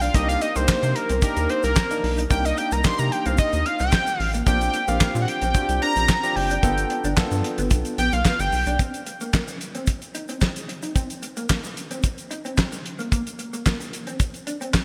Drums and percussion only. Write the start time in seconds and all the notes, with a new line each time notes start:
0.01 closed hi-hat, shaker
0.14 kick, closed hi-hat, shaker
0.29 closed hi-hat, shaker
0.41 closed hi-hat, shaker
0.56 closed hi-hat, shaker
0.68 kick, snare, clap, shaker
0.83 closed hi-hat, shaker
0.96 closed hi-hat
1.09 closed hi-hat, shaker
1.22 kick, closed hi-hat, shaker
1.36 closed hi-hat, shaker
1.49 closed hi-hat
1.63 closed hi-hat, shaker
1.76 kick, snare, clap, shaker
1.91 closed hi-hat, shaker
2.04 open hi-hat
2.17 closed hi-hat, shaker
2.31 kick, closed hi-hat, shaker
2.45 closed hi-hat, shaker
2.57 closed hi-hat, shaker
2.71 closed hi-hat, shaker
2.84 kick, snare, clap, shaker
2.98 closed hi-hat, shaker
3.12 closed hi-hat
3.26 closed hi-hat, shaker
3.38 kick, closed hi-hat, shaker
3.53 closed hi-hat, shaker
3.66 closed hi-hat
3.79 closed hi-hat, shaker
3.92 kick, snare, clap, shaker
4.07 closed hi-hat, shaker
4.20 open hi-hat
4.33 closed hi-hat, shaker
4.46 kick, closed hi-hat, shaker
4.61 closed hi-hat, shaker
4.74 closed hi-hat, shaker
4.88 closed hi-hat, shaker
5.00 kick, snare, clap, shaker
5.15 closed hi-hat, shaker
5.28 closed hi-hat
5.42 closed hi-hat, shaker
5.54 kick, closed hi-hat, shaker
5.69 closed hi-hat, shaker
5.82 closed hi-hat
5.96 closed hi-hat, shaker
6.08 kick, snare, clap, shaker
6.23 closed hi-hat, shaker
6.36 open hi-hat
6.50 closed hi-hat, shaker
6.63 kick, closed hi-hat, shaker
6.78 closed hi-hat, shaker
6.90 closed hi-hat
7.04 closed hi-hat, shaker
7.17 kick, snare, clap, shaker
7.31 closed hi-hat, shaker
7.44 closed hi-hat
7.58 closed hi-hat, shaker
7.71 kick, closed hi-hat, shaker
7.85 closed hi-hat, shaker
7.98 closed hi-hat, shaker
8.12 closed hi-hat, shaker
8.25 kick, snare, clap, shaker
8.39 closed hi-hat, shaker
8.52 open hi-hat, shaker
8.66 closed hi-hat, shaker
8.79 kick, closed hi-hat, shaker
8.94 closed hi-hat, shaker
9.06 closed hi-hat, shaker
9.21 closed hi-hat, shaker
9.33 kick, snare, clap, shaker
9.48 closed hi-hat, shaker
9.61 closed hi-hat, shaker
9.75 closed hi-hat, shaker
9.87 kick, closed hi-hat, shaker
10.02 closed hi-hat, shaker
10.15 closed hi-hat, shaker
10.28 closed hi-hat, shaker
10.41 kick, snare, clap, shaker
10.56 closed hi-hat, shaker
10.69 closed hi-hat
10.82 closed hi-hat, shaker
10.96 kick, closed hi-hat, shaker
11.10 closed hi-hat, shaker
11.22 closed hi-hat, shaker
11.37 closed hi-hat, shaker
11.49 kick, snare, clap, shaker
11.64 closed hi-hat, shaker
11.77 closed hi-hat, shaker
11.91 closed hi-hat, shaker
12.03 kick, closed hi-hat, shaker
12.18 closed hi-hat, shaker
12.31 closed hi-hat, shaker
12.45 closed hi-hat, shaker
12.57 kick, snare, clap, shaker
12.72 closed hi-hat, shaker
12.86 closed hi-hat
12.99 closed hi-hat, shaker
13.12 kick, closed hi-hat, shaker
13.27 closed hi-hat, shaker
13.39 closed hi-hat, shaker
13.53 closed hi-hat, shaker
13.66 kick, snare, clap, shaker
13.80 closed hi-hat, shaker
13.93 closed hi-hat, shaker
14.07 closed hi-hat, shaker
14.20 kick, closed hi-hat, shaker
14.34 closed hi-hat, shaker
14.47 closed hi-hat, shaker
14.61 closed hi-hat, shaker
14.73 kick, snare, clap, shaker